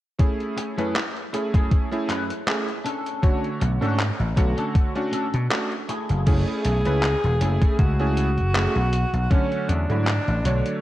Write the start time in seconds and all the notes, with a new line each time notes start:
0.19 A3 C#4 E4 G#4, kick, closed hi-hat
0.40 closed hi-hat
0.57 muted clean electric guitar stroke, closed hi-hat
0.77 F#2 A3 C#4 E4 G#4 B4, closed hi-hat
0.96 clap, closed hi-hat
1.16 closed hi-hat
1.33 A3 C#4 E4 G#4, muted clean electric guitar stroke, closed hi-hat
1.53 F#2 A3 E4 G#4, kick, closed hi-hat
1.71 kick, closed hi-hat
1.91 A3 C#4 E4 G#4, closed hi-hat
2.09 F#2 A3 E4 B4, clap, closed hi-hat
2.30 closed hi-hat
2.47 A3 C#4 E4 G#4, clap, closed hi-hat
2.69 closed hi-hat
2.85 C#4 D4 A4, closed hi-hat
3.06 closed hi-hat
3.22 D3 A3 F#4 C#5, kick, closed hi-hat
3.44 closed hi-hat
3.60 B1, muted clean electric guitar stroke, closed hi-hat
3.81 G#2 A3 C#4 D4 F#4 A4, closed hi-hat
3.99 clap, closed hi-hat
4.20 A1, closed hi-hat
4.36 B1 D3 A3 F#4 C#5, muted clean electric guitar stroke, kick, closed hi-hat
4.57 C#4 D4 A4, closed hi-hat
4.75 kick, closed hi-hat
4.95 A3 C#4 D4 F#4, closed hi-hat
5.13 C#4 D4 A4, closed hi-hat
5.34 B2, closed hi-hat
5.50 A3 C#4 D4 F#4, clap, closed hi-hat
5.72 closed hi-hat
5.89 A3 E4 G#4, closed hi-hat
6.09 F#1, closed hi-hat
6.26 F#1 A3 C#4 E4 G#4, kick, closed hi-hat, crash
6.48 closed hi-hat
6.65 B1, closed hi-hat
6.85 C#2 A3 C#4 E4 B4, closed hi-hat
7.03 clap, closed hi-hat
7.24 E1, closed hi-hat
7.41 F#1 A3 C#4 E4 G#4, closed hi-hat
7.62 kick, closed hi-hat
7.79 C#2 F#4, kick, closed hi-hat
7.99 A3 C#4 E4 G#4, closed hi-hat
8.17 closed hi-hat
8.38 F#1, closed hi-hat
8.55 A3 C#4 E4 G#4, clap, closed hi-hat
8.76 B1, closed hi-hat
8.93 closed hi-hat
9.13 B1, closed hi-hat
9.30 D3 F#3 A3 C#4, kick, closed hi-hat
9.52 closed hi-hat
9.69 E2 D4, closed hi-hat
9.89 G#2 D3 F#3 A3 E4, closed hi-hat
10.07 clap, closed hi-hat
10.28 A1, closed hi-hat
10.44 B1 D3 F#3 A3 C#5, closed hi-hat
10.66 closed hi-hat